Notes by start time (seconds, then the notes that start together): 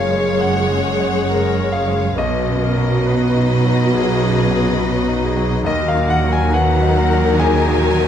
Already playing: F#1 F#2 A#2 C#3 G#3 C#4 G#4 A#4 C#5 F5
0.11 G#3
0.40 F#2 F#5
0.71 C#3
1.00 G#3
1.30 A#4
1.58 C#4
1.72 G#4 F5
1.88 G#3
2.17 B1 B2 F#3 B3 F#4 B4 D#5
2.47 F#2
2.62 A#4
2.77 F#3
3.06 B4
3.36 D#4
3.65 F#3
3.93 B1 G#4
4.23 F#2
4.50 F#3
4.79 F#4 B4
5.08 D#4
5.24 G#4
5.37 F#3
5.64 D#2 A#2 D#3 F#3 D#4 F#4 A#4 D#5
5.88 F5
5.95 A#2
6.09 F#5
6.24 F#3
6.32 G#5
6.53 F#4 B4 F#5
6.81 D#4
6.97 A#4
7.10 F#3
7.39 D#2 G#4 G#5
7.68 A#2
7.83 F#4
7.97 F#3